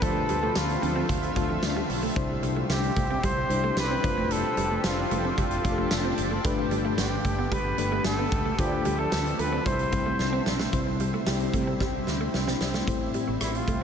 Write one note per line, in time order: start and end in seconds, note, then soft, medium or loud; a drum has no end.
0.02 0.21 D2 loud
0.02 2.14 D3 medium
0.02 0.78 D3 medium
0.02 0.13 F3 medium
0.02 0.86 A3 medium
0.02 2.14 A3 medium
0.02 6.41 C4 medium
0.02 0.86 D4 medium
0.02 0.13 D4 loud
0.02 2.14 F4 medium
0.02 0.86 F4 medium
0.02 0.13 A4 loud
0.02 0.59 A4 loud
0.02 0.86 C5 medium
0.02 2.14 E5 medium
0.02 kick loud
0.02 closed hi-hat medium
0.16 muted clean electric guitar stroke soft
0.29 0.48 D2 loud
0.29 0.37 G3 medium
0.29 closed hi-hat medium
0.42 0.54 F3 medium
0.42 0.51 A3 medium
0.42 0.54 D4 medium
0.42 0.54 A4 medium
0.55 0.75 D2 loud
0.55 1.09 F4 medium
0.55 muted clean electric guitar stroke soft
0.55 snare loud
0.55 closed hi-hat medium
0.55 tambourine medium
0.69 closed hi-hat medium
0.82 1.02 D2 medium
0.82 1.05 F3 loud
0.82 0.90 C4 medium
0.82 1.05 D4 loud
0.82 1.05 A4 loud
0.82 closed hi-hat medium
0.96 1.04 C4 medium
1.09 1.28 D2 loud
1.09 1.17 A3 medium
1.09 1.86 F4 medium
1.09 kick medium
1.09 closed hi-hat medium
1.23 closed hi-hat medium
1.36 1.56 D2 medium
1.36 1.99 A3 medium
1.36 1.99 D4 medium
1.36 2.00 F4 medium
1.36 2.00 A4 medium
1.36 muted clean electric guitar stroke soft
1.36 kick medium
1.36 closed hi-hat medium
1.50 1.57 F3 medium
1.63 1.82 D2 loud
1.63 snare loud
1.63 closed hi-hat medium
1.63 tambourine medium
1.77 1.84 G3 medium
1.90 2.09 B1 medium
1.90 muted clean electric guitar stroke soft
1.90 open hi-hat medium
2.03 2.11 A3 medium
2.16 2.35 C2 loud
2.16 2.93 C3 medium
2.16 4.02 C3 medium
2.16 3.00 G3 medium
2.16 3.00 D4 medium
2.16 6.41 D4 medium
2.16 3.00 E4 medium
2.16 4.02 E4 medium
2.16 8.55 G4 medium
2.16 3.01 C5 medium
2.16 kick loud
2.16 closed hi-hat medium
2.30 muted clean electric guitar stroke soft
2.43 2.62 C2 loud
2.43 2.51 G3 medium
2.43 closed hi-hat medium
2.57 2.64 A3 medium
2.69 2.89 C2 loud
2.69 3.26 G4 loud
2.69 muted clean electric guitar stroke soft
2.69 snare loud
2.69 closed hi-hat medium
2.69 tambourine medium
2.84 closed hi-hat medium
2.97 3.16 C2 medium
2.97 3.04 A3 medium
2.97 kick medium
2.97 closed hi-hat medium
3.11 3.18 C4 medium
3.23 3.43 C2 loud
3.23 3.31 G3 medium
3.23 3.77 C5 loud
3.23 kick medium
3.23 closed hi-hat medium
3.49 3.69 C2 loud
3.49 4.03 G3 medium
3.49 4.03 D4 medium
3.49 4.04 E4 medium
3.49 4.04 C5 medium
3.49 muted clean electric guitar stroke soft
3.49 closed hi-hat medium
3.64 3.72 A3 medium
3.77 3.96 C2 loud
3.77 4.33 B4 loud
3.77 snare loud
3.77 closed hi-hat medium
3.77 tambourine medium
3.91 3.99 C4 medium
4.03 4.42 F1 medium
4.03 6.42 F3 medium
4.03 4.10 G3 medium
4.03 4.90 D4 medium
4.03 4.90 F4 medium
4.03 6.42 A4 medium
4.03 4.90 C5 medium
4.03 muted clean electric guitar stroke soft
4.03 kick loud
4.03 closed hi-hat medium
4.10 4.93 A3 medium
4.18 4.25 A3 medium
4.31 4.85 A4 loud
4.31 closed hi-hat medium
4.44 muted clean electric guitar stroke soft
4.57 4.76 F1 loud
4.57 4.65 G3 medium
4.57 closed hi-hat medium
4.71 4.79 A3 medium
4.84 5.03 F1 loud
4.84 5.34 F4 medium
4.84 muted clean electric guitar stroke soft
4.84 snare loud
4.84 closed hi-hat medium
4.84 tambourine medium
5.11 5.30 F1 loud
5.11 5.19 A3 medium
5.11 closed hi-hat medium
5.25 5.33 C4 medium
5.38 5.57 F1 loud
5.38 5.46 G3 medium
5.38 6.15 F4 medium
5.38 kick medium
5.38 closed hi-hat medium
5.51 closed hi-hat medium
5.64 5.84 F1 loud
5.64 6.27 A3 medium
5.64 6.28 D4 medium
5.64 6.28 F4 medium
5.64 5.71 G4 medium
5.64 muted clean electric guitar stroke soft
5.64 kick medium
5.64 closed hi-hat medium
5.72 6.31 A4 medium
5.78 5.86 A3 medium
5.91 6.11 F1 loud
5.91 snare loud
5.91 closed hi-hat medium
5.91 tambourine medium
6.05 6.13 C4 medium
6.18 6.37 F#1 loud
6.18 muted clean electric guitar stroke soft
6.18 closed hi-hat medium
6.31 6.39 A3 medium
6.44 6.64 G1 loud
6.44 7.21 G2 medium
6.44 7.29 A3 medium
6.44 9.63 A3 medium
6.44 8.57 B3 medium
6.44 7.29 D4 medium
6.44 7.29 G4 medium
6.44 7.29 B4 loud
6.44 kick loud
6.44 closed hi-hat medium
6.58 muted clean electric guitar stroke soft
6.71 6.90 G1 loud
6.71 6.79 G3 medium
6.71 closed hi-hat medium
6.85 6.93 A3 medium
6.98 7.18 G1 loud
6.98 7.54 G4 medium
6.98 muted clean electric guitar stroke soft
6.98 snare loud
6.98 closed hi-hat loud
6.98 tambourine medium
7.25 7.44 G1 loud
7.25 7.33 A3 medium
7.25 kick medium
7.25 closed hi-hat medium
7.39 7.46 B3 medium
7.52 7.71 G1 loud
7.52 7.60 G3 medium
7.52 8.05 B4 loud
7.52 kick medium
7.52 closed hi-hat medium
7.78 7.98 G1 loud
7.78 8.41 A3 medium
7.78 8.41 D4 medium
7.78 8.42 G4 medium
7.78 8.42 B4 medium
7.78 muted clean electric guitar stroke soft
7.78 closed hi-hat medium
7.92 8.00 A3 medium
8.05 8.24 G1 loud
8.05 8.61 A4 medium
8.05 snare loud
8.05 closed hi-hat medium
8.05 tambourine medium
8.19 8.27 B3 medium
8.32 8.51 C#2 medium
8.32 muted clean electric guitar stroke soft
8.32 kick loud
8.32 closed hi-hat medium
8.46 8.53 A3 medium
8.58 8.78 D2 loud
8.58 9.65 D3 medium
8.58 9.35 D3 medium
8.58 8.70 F3 loud
8.58 9.43 A3 medium
8.58 10.71 C4 medium
8.58 8.70 D4 loud
8.58 9.43 D4 medium
8.58 9.65 F4 medium
8.58 9.43 F4 medium
8.58 8.99 G4 loud
8.58 8.70 A4 loud
8.58 9.44 C5 medium
8.58 10.71 E5 medium
8.58 kick loud
8.58 closed hi-hat medium
8.72 muted clean electric guitar stroke soft
8.85 9.05 D2 loud
8.85 8.93 G3 medium
8.85 closed hi-hat medium
8.99 9.11 F3 medium
8.99 9.07 A3 medium
8.99 9.11 D4 medium
8.99 9.41 A4 loud
8.99 9.11 A4 medium
9.12 9.32 D2 medium
9.12 muted clean electric guitar stroke soft
9.12 snare loud
9.12 closed hi-hat loud
9.12 tambourine medium
9.26 closed hi-hat medium
9.39 9.58 D2 loud
9.39 9.62 F3 loud
9.39 9.47 A3 medium
9.39 9.62 D4 loud
9.39 9.62 A4 loud
9.39 9.66 B4 loud
9.39 closed hi-hat medium
9.53 9.61 C4 medium
9.65 9.85 C2 loud
9.65 10.43 C3 medium
9.65 9.87 G3 medium
9.65 9.74 G3 medium
9.65 9.87 C4 medium
9.65 9.88 E4 medium
9.65 10.43 C5 loud
9.65 9.88 C5 medium
9.65 kick medium
9.65 closed hi-hat medium
9.79 closed hi-hat medium
9.92 10.12 C2 loud
9.92 10.56 G3 medium
9.92 10.56 C4 medium
9.92 10.56 E4 medium
9.92 10.56 C5 medium
9.92 muted clean electric guitar stroke soft
9.92 kick medium
9.92 closed hi-hat medium
10.06 10.14 A3 medium
10.19 10.39 C2 loud
10.19 snare medium
10.19 tambourine medium
10.33 10.41 C4 medium
10.46 10.66 B1 medium
10.46 muted clean electric guitar stroke soft
10.46 snare loud
10.60 10.68 A3 medium
10.60 snare loud
10.72 11.12 C2 medium
10.72 11.49 C3 medium
10.72 11.15 G3 medium
10.72 12.85 G3 medium
10.72 12.85 C4 medium
10.72 11.15 C4 medium
10.72 12.85 E4 medium
10.72 11.15 E4 medium
10.72 11.16 C5 medium
10.72 kick loud
10.72 closed hi-hat medium
10.87 muted clean electric guitar stroke soft
11.00 11.08 G3 medium
11.00 closed hi-hat medium
11.14 11.22 A3 medium
11.26 11.47 C2 loud
11.26 12.11 G3 medium
11.26 12.11 C4 medium
11.26 12.11 E4 medium
11.26 12.11 G4 medium
11.26 muted clean electric guitar stroke soft
11.26 snare loud
11.26 closed hi-hat medium
11.40 closed hi-hat soft
11.53 11.73 C3 loud
11.53 11.62 A3 medium
11.53 kick medium
11.53 closed hi-hat medium
11.67 11.75 C4 medium
11.80 12.00 C2 loud
11.80 11.89 G3 medium
11.80 kick medium
11.80 snare medium
12.07 12.27 D2 medium
12.07 muted clean electric guitar stroke soft
12.07 snare medium
12.21 12.29 A3 medium
12.34 12.54 C2 medium
12.34 snare medium
12.47 12.56 C4 medium
12.47 snare medium
12.61 12.80 C2 medium
12.61 muted clean electric guitar stroke soft
12.61 snare medium
12.74 12.82 A3 medium
12.74 snare medium
12.87 13.07 A1 medium
12.87 13.64 A2 medium
12.87 13.71 A3 medium
12.87 13.83 A3 medium
12.87 13.72 C4 medium
12.87 13.83 C4 medium
12.87 13.83 E4 medium
12.87 13.72 E4 medium
12.87 13.72 C5 medium
12.87 kick loud
12.87 closed hi-hat medium
13.01 muted clean electric guitar stroke soft
13.14 13.22 G3 medium
13.14 closed hi-hat medium
13.28 13.38 A1 medium
13.28 13.35 A3 medium
13.41 13.60 A1 medium
13.41 13.57 E4 medium
13.41 muted clean electric guitar stroke soft
13.41 cross-stick loud
13.41 closed hi-hat medium
13.41 tambourine medium
13.55 13.83 F4 medium
13.55 closed hi-hat soft
13.68 13.83 C2 medium
13.68 13.76 A3 medium
13.68 kick medium
13.68 closed hi-hat medium